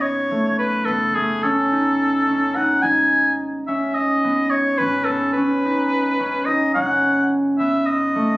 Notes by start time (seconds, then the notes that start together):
Already playing: F#1 B3 C#4 D#4
0.02 C#5
0.31 A3
0.59 B4
0.86 F#1 B3 A4
1.15 A3 G#4
1.43 C#4 A4
1.72 D#4
2.28 C#4
2.56 D#4 F#5
2.83 G#1 D#4 G#5
3.67 C#4 E5
3.95 D#5
4.24 B3
4.51 C#5
4.78 G#1 C#4 B4
5.05 B3 A4
5.33 B4
5.37 C#4
5.65 D#4
6.20 C#4
6.46 D#4 D#5
6.75 F#1 C#4 F#5
7.59 B3 E5
7.87 D#5
8.15 A3